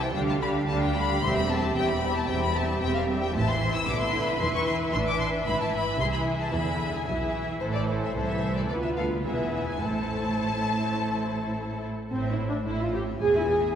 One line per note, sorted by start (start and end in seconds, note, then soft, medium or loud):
0.00 0.14 E3 soft
0.00 0.14 E4 soft
0.00 0.14 G4 soft
0.00 0.14 C5 soft
0.00 0.14 G5 soft
0.15 0.62 D2 medium
0.15 0.62 D3 medium
0.15 0.40 G3 soft
0.15 0.40 D4 soft
0.15 0.40 G4 soft
0.15 0.40 F5 soft
0.15 0.20 G5 medium
0.29 0.34 A5 medium
0.41 0.66 G3 soft
0.41 0.67 D4 soft
0.41 0.67 G4 soft
0.41 0.67 F5 soft
0.41 0.50 B5 medium
0.68 1.16 D2 medium
0.68 1.16 D3 medium
0.68 0.93 G3 soft
0.68 0.93 D4 soft
0.68 0.94 G4 soft
0.68 0.94 F5 soft
0.68 0.81 A5 medium
0.83 0.95 G5 medium
0.94 1.20 G3 soft
0.94 1.21 D4 soft
0.94 1.21 G4 soft
0.94 1.22 F5 soft
0.94 1.22 B5 medium
1.21 1.70 E1 medium
1.21 1.70 E2 medium
1.21 1.48 G3 medium
1.21 1.48 C4 medium
1.21 1.48 G4 soft
1.21 1.48 E5 soft
1.21 1.36 C6 medium
1.36 1.49 B5 medium
1.49 1.74 G3 soft
1.49 1.74 C4 soft
1.49 1.75 G4 soft
1.49 1.75 E5 soft
1.49 1.76 A5 medium
1.75 2.23 E1 medium
1.75 2.23 E2 medium
1.75 2.00 G3 soft
1.75 2.00 C4 soft
1.75 2.02 G4 medium
1.75 2.02 E5 soft
1.75 1.89 G5 medium
1.89 2.16 B5 medium
2.01 2.27 G3 soft
2.01 2.27 C4 soft
2.01 2.28 G4 soft
2.01 2.28 E5 soft
2.16 2.29 A5 medium
2.28 2.76 E1 medium
2.28 2.76 E2 medium
2.28 2.54 G3 soft
2.28 2.54 C4 soft
2.28 2.55 G4 soft
2.28 2.55 E5 soft
2.28 2.42 G5 medium
2.44 2.56 B5 medium
2.55 2.81 G3 soft
2.55 2.81 C4 soft
2.55 2.80 G4 soft
2.55 2.80 E5 soft
2.55 2.82 A5 medium
2.82 3.29 E1 medium
2.82 3.29 E2 medium
2.82 3.07 G3 soft
2.82 3.07 C4 soft
2.82 3.07 G4 soft
2.82 3.07 E5 soft
2.82 2.95 G5 medium
2.95 3.03 F5 medium
3.08 3.34 G3 soft
3.08 3.34 C4 soft
3.08 3.34 G4 soft
3.08 3.33 E5 soft
3.22 3.35 G5 medium
3.34 3.85 A1 medium
3.34 3.84 A2 medium
3.34 3.85 E3 soft
3.34 4.37 E4 medium
3.34 3.84 C5 soft
3.34 3.84 E5 soft
3.34 3.48 A5 medium
3.49 3.75 C6 medium
3.76 3.89 E6 medium
3.88 4.37 B1 medium
3.88 4.37 B2 medium
3.88 4.40 D3 soft
3.88 5.46 B4 medium
3.88 6.49 E5 medium
3.88 4.02 D6 medium
4.01 4.27 C6 medium
4.28 4.41 B5 medium
4.40 4.90 E1 medium
4.40 4.90 E2 medium
4.40 4.93 E3 medium
4.40 4.93 E4 medium
4.40 4.54 C6 medium
4.55 4.67 C#6 medium
4.67 4.75 C6 medium
4.93 5.43 A1 medium
4.93 5.43 A2 medium
4.93 5.46 E3 medium
4.93 5.47 D4 soft
4.93 4.99 C6 medium
5.07 5.20 D6 medium
5.20 5.28 C6 medium
5.46 5.96 G#1 medium
5.46 5.96 G#2 medium
5.46 5.99 E3 soft
5.46 5.99 E4 soft
5.46 5.99 B4 soft
5.46 5.60 B5 medium
5.61 5.74 A5 medium
5.74 6.00 B5 medium
6.00 6.49 C2 medium
6.00 6.50 C3 medium
6.00 6.52 E3 soft
6.00 6.52 E4 soft
6.00 6.52 G#4 soft
6.00 6.05 C6 medium
6.13 6.21 B5 medium
6.39 6.53 A5 medium
6.52 7.03 E2 medium
6.52 7.07 D3 soft
6.52 7.03 E3 medium
6.52 7.06 E4 soft
6.52 7.06 G#4 soft
6.52 7.05 E5 soft
6.52 6.93 B5 medium
6.94 7.07 G#5 medium
7.07 7.58 B1 medium
7.07 7.58 B2 medium
7.07 7.60 E3 soft
7.07 7.60 E4 soft
7.07 7.60 G#4 soft
7.07 7.60 E5 soft
7.61 8.12 A1 soft
7.61 8.12 A2 soft
7.61 8.12 E3 soft
7.61 8.11 E4 soft
7.61 8.12 A4 soft
7.61 7.66 C5 medium
7.61 8.12 C5 soft
7.74 7.82 D5 medium
8.03 8.16 E5 medium
8.14 8.70 C2 soft
8.14 8.69 E3 soft
8.14 8.69 E4 soft
8.14 8.69 A4 soft
8.14 8.28 C5 medium
8.14 8.69 C5 soft
8.29 8.56 E5 medium
8.57 8.62 D5 soft
8.69 9.25 D2 soft
8.69 9.26 D2 soft
8.69 9.24 B3 soft
8.69 9.26 F4 soft
8.69 9.24 B4 soft
8.69 8.75 D5 medium
8.83 8.89 E5 soft
8.97 9.06 A4 soft
8.97 9.05 F5 medium
9.25 9.83 E1 soft
9.25 9.82 E2 soft
9.25 9.81 B3 soft
9.25 9.82 E4 soft
9.25 9.81 G#4 soft
9.25 9.82 B4 soft
9.25 9.53 E5 medium
9.54 9.68 E5 soft
9.69 9.83 G#5 soft
9.82 11.90 A1 soft
9.82 11.90 A2 soft
9.82 11.90 A3 soft
9.82 11.86 E4 soft
9.82 11.86 A4 soft
9.82 11.90 C5 soft
9.82 11.82 A5 medium
12.10 12.59 A1 soft
12.10 12.59 A2 soft
12.10 12.28 C4 medium
12.10 12.23 C5 soft
12.24 12.38 E5 soft
12.31 12.48 E4 medium
12.37 12.51 C5 soft
12.49 12.56 D4 soft
12.49 12.65 E5 soft
12.65 13.14 A1 soft
12.65 13.15 A2 soft
12.65 12.79 E4 medium
12.65 12.78 C5 soft
12.78 12.94 F4 medium
12.78 12.93 E5 soft
12.93 13.02 G4 medium
12.93 13.07 C5 soft
13.07 13.21 E5 soft
13.21 13.69 E1 soft
13.21 13.70 E2 soft
13.21 13.35 G#4 medium
13.21 13.34 G#5 soft
13.21 13.72 G#5 soft
13.35 13.49 E4 medium
13.35 13.49 E5 soft
13.48 13.75 G#4 medium
13.48 13.62 G#5 soft
13.62 13.75 E5 soft